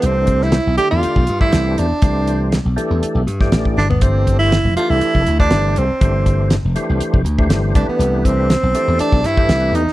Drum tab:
HH |x-x-x-x-x-x-x-x-|x-x-x-x-x-x-x---|x-x-x-x-x-x-x-x-|x-x-x-x-x-x-x-x-|
SD |---oo-------o---|----o------oo-o-|----o------oo---|----o-------o---|
FT |----------------|---------------o|----------------|----------------|
BD |--o------o-o----|o----------o-o--|o-o------o-o----|o-o------o-o--o-|

HH |x-x-x-x-x-x-x-x-|
SD |----o-----o-o--o|
FT |----------------|
BD |--o------o-o----|